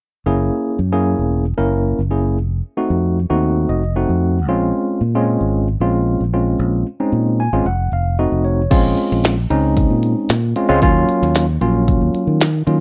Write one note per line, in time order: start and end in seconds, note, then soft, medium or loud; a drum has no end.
0.26 0.49 F#1 medium
0.26 0.78 A#3 medium
0.26 0.78 C#4 medium
0.26 0.78 E4 medium
0.26 0.78 G#4 medium
0.79 1.14 F#2 medium
0.92 1.44 A#3 medium
0.92 1.44 C#4 medium
0.92 1.44 E4 medium
0.92 1.44 G#4 medium
1.19 1.53 E1 medium
1.58 1.93 F#1 medium
1.58 2.00 A#3 medium
1.58 2.00 C#4 medium
1.58 2.00 E4 medium
1.58 2.00 A#4 medium
1.99 2.38 F#1 medium
2.11 2.37 A#3 medium
2.11 2.37 C#4 medium
2.11 2.37 E4 medium
2.11 2.37 G#4 medium
2.38 2.60 F1 medium
2.77 3.18 A3 medium
2.77 3.18 C4 medium
2.77 3.19 D#4 medium
2.77 3.19 F#4 medium
2.90 3.25 F2 medium
3.30 3.64 D#2 medium
3.30 3.82 A3 medium
3.30 3.82 C4 medium
3.30 3.82 D#4 medium
3.30 3.82 F#4 medium
3.69 4.04 F1 medium
3.69 3.94 D#5 medium
3.96 4.38 A3 medium
3.96 4.38 C4 medium
3.96 4.38 D#4 medium
3.96 4.38 F#4 medium
3.96 4.45 F#5 medium
4.09 4.48 F2 medium
4.48 4.71 A#1 medium
4.48 5.01 G#3 medium
4.48 5.01 C4 medium
4.48 5.01 C#4 medium
4.48 5.01 F4 medium
5.01 5.36 A#2 medium
5.15 5.67 G#3 medium
5.15 5.67 C4 medium
5.15 5.67 C#4 medium
5.15 5.67 F4 medium
5.41 5.75 G#1 medium
5.80 6.16 A#1 medium
5.80 6.23 G#3 medium
5.80 6.23 C4 medium
5.80 6.23 C#4 medium
5.80 6.23 F4 medium
6.20 6.55 A#1 medium
6.34 6.86 G#3 medium
6.34 6.86 C4 medium
6.34 6.86 C#4 medium
6.34 6.86 F4 medium
6.59 6.83 A#1 medium
7.00 7.41 G#3 medium
7.00 7.41 C4 medium
7.00 7.41 C#4 medium
7.00 7.41 D#4 medium
7.12 7.48 A#2 medium
7.40 7.64 G#5 medium
7.53 7.64 G#1 medium
7.53 7.66 G#3 medium
7.53 7.66 C4 medium
7.53 7.66 C#4 medium
7.53 7.66 F4 medium
7.65 7.89 F1 medium
7.65 7.91 F#5 medium
7.92 8.27 F1 medium
7.92 8.17 F5 medium
8.19 8.61 A3 medium
8.19 8.61 C4 medium
8.19 8.61 D#4 medium
8.19 8.61 F#4 medium
8.19 8.43 D#5 medium
8.32 8.66 F1 medium
8.45 8.69 C#5 medium
8.71 8.94 A#1 medium
8.71 9.34 G#3 medium
8.71 9.34 C4 medium
8.71 9.34 C#4 medium
8.71 9.34 F4 loud
8.71 kick loud
8.71 closed hi-hat medium
8.71 crash loud
8.98 closed hi-hat medium
9.12 9.46 A#1 medium
9.12 snare soft
9.24 snare loud
9.24 closed hi-hat medium
9.24 tambourine loud
9.50 9.86 C#2 medium
9.50 10.34 G#3 medium
9.50 10.34 C4 medium
9.50 10.34 C#4 medium
9.50 10.34 D#4 medium
9.50 closed hi-hat medium
9.77 kick medium
9.77 closed hi-hat medium
9.90 10.14 A#2 medium
10.03 closed hi-hat medium
10.29 10.53 A#2 medium
10.29 snare loud
10.29 closed hi-hat medium
10.29 tambourine loud
10.56 10.67 G#3 medium
10.56 10.67 C4 medium
10.56 10.67 C#4 medium
10.56 10.67 F4 medium
10.56 closed hi-hat medium
10.69 10.81 C#2 medium
10.69 10.79 G#3 medium
10.69 10.79 C4 medium
10.69 10.79 C#4 medium
10.69 10.79 F4 medium
10.82 11.05 D#2 loud
10.82 11.45 F#3 medium
10.82 11.45 A#3 medium
10.82 11.45 C#4 medium
10.82 11.45 F4 medium
10.82 kick loud
10.82 closed hi-hat medium
11.09 muted fingered electric bass stroke soft
11.09 closed hi-hat medium
11.22 11.57 D#2 loud
11.22 snare soft
11.35 snare loud
11.35 closed hi-hat medium
11.35 tambourine loud
11.61 11.96 A#1 medium
11.61 12.44 F#3 medium
11.61 12.45 A#3 medium
11.61 12.45 C#4 medium
11.61 12.45 F4 medium
11.61 closed hi-hat medium
11.88 kick medium
11.88 closed hi-hat medium
12.01 12.12 D#2 medium
12.14 muted fingered electric bass stroke soft
12.14 closed hi-hat medium
12.27 12.62 D#3 medium
12.41 snare loud
12.41 closed hi-hat medium
12.41 tambourine loud
12.67 12.79 D#3 medium
12.67 12.78 F#3 medium
12.67 12.78 A#3 medium
12.67 12.78 C#4 medium
12.67 12.78 F4 medium
12.67 closed hi-hat medium